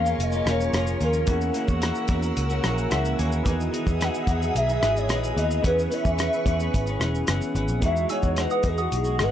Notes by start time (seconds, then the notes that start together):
Already playing: E2 A#3 C#4 F4 G#4 A#4 F5 G#5 C#6
0.05 A#3 C#4 F4, shaker
0.18 F1 D#5, closed hi-hat, shaker
0.32 A#3 C#4 F4, shaker
0.45 E1 F3 A#3 C#4 F4, cross-stick, closed hi-hat, shaker
0.49 C#5
0.61 shaker
0.73 F1 A#2 F3 A#3 C#4 F4, cross-stick, closed hi-hat, shaker
0.87 shaker
0.99 D#2 F3 A#3 C#4 F4, closed hi-hat, shaker
1.04 A#4
1.13 shaker
1.26 E2 E3 A#3 C#4 E4 F#4 A#4 F#5 E6, kick, closed hi-hat, shaker
1.31 G#4
1.41 shaker
1.54 E3 A#3 C#4 F#4, closed hi-hat, shaker
1.67 E2 A#3 C#4 F#4, kick, shaker
1.81 E3 A#3 C#4 F#4, cross-stick, closed hi-hat, shaker
1.95 shaker
2.08 E2 E3 A#3 C#4 F#4, kick, closed hi-hat, shaker
2.21 A#3 C#4 F#4, shaker
2.37 C#2, closed hi-hat, shaker
2.49 A#3 C#4 F#4, shaker
2.62 A#1 E3 A#3 C#4 F#4, cross-stick, closed hi-hat, shaker
2.78 shaker
2.90 C#2 E3 A#3 C#4 E4 F#4 G#4 E5, cross-stick, closed hi-hat, shaker
3.05 shaker
3.17 D#2 E3 A#3 C#4 F#4 G#5, closed hi-hat, shaker
3.32 shaker
3.43 E2 D#3 E3 B3 D#4 F#4 G#4 E5 D#6, kick, closed hi-hat, shaker
3.47 G#4
3.61 shaker
3.71 E3 B3 D#4 G#4, closed hi-hat, shaker
3.86 E2 B3 D#4 G#4, kick, shaker
3.95 G#5
4.00 E3 B3 D#4 G#4 F#5, cross-stick, closed hi-hat, shaker
4.14 shaker
4.26 E2 E3 B3 D#4 G#4, kick, closed hi-hat, shaker
4.40 B3 D#4 G#4, shaker
4.55 B1 E5, closed hi-hat, shaker
4.68 B3 D#4 G#4, shaker
4.81 G#1 E3 B3 D#4 G#4, cross-stick, closed hi-hat, shaker
4.97 C#5, shaker
5.08 A#1 E3 B3 D#4 G#4, cross-stick, closed hi-hat, shaker
5.24 shaker
5.35 D#2 E3 B3 D#4 G#4 D#5, closed hi-hat, shaker
5.51 shaker
5.62 E2 E3 B3 C#4 E4 G#4 B4 C#6, kick, closed hi-hat, shaker
5.67 G#4
5.79 shaker
5.90 E3 B3 C#4 G#4 E5, closed hi-hat, shaker
6.03 E2 B3 C#4 G#4, kick, shaker
6.17 E3 B3 C#4 G#4, cross-stick, closed hi-hat, shaker
6.33 shaker
6.45 E2 E3 B3 C#4 G#4, kick, closed hi-hat, shaker
6.59 B3 C#4 G#4, shaker
6.74 G#1, kick, closed hi-hat, shaker
6.86 B3 C#4 G#4, shaker
6.99 E1 E3 B3 C#4 G#4, cross-stick, closed hi-hat, shaker
7.15 shaker
7.27 F#1 E3 B3 C#4 G#4, cross-stick, closed hi-hat, shaker
7.42 shaker
7.54 G#1 E3 B3 C#4 G#4, closed hi-hat, shaker
7.68 A#1, shaker
7.79 E2 E3 G#3 B3 D#4 F#4, kick, closed hi-hat, shaker
7.84 F#4 G#4 E5
7.96 shaker
8.09 E3 G#3 D#4 F#4 C#5 G#5 E6, closed hi-hat, shaker
8.23 E2, kick, shaker
8.36 E3 G#3 D#4 F#4, cross-stick, closed hi-hat, shaker
8.40 B4
8.50 F#5 D#6, shaker
8.63 E2 E3 G#3 D#4 F#4, kick, closed hi-hat, shaker
8.67 G#4
8.78 F#4 F#5 D#6, shaker
8.92 B1 G#4, closed hi-hat, shaker
9.04 G#3 D#4 F#4, shaker
9.18 G#1 E3 G#3 D#4 F#4, cross-stick, closed hi-hat, shaker
9.23 B4